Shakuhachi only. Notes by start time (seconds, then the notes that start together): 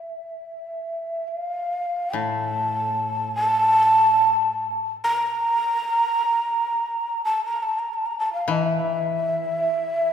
Already playing: E5
1.28 F5
2.15 A5
3.35 A5
5.04 A#5
7.25 A5
7.45 A#5
7.63 A5
7.79 A#5
7.93 A5
8.06 A#5
8.19 A5
8.33 F5
8.50 D#5
8.65 E5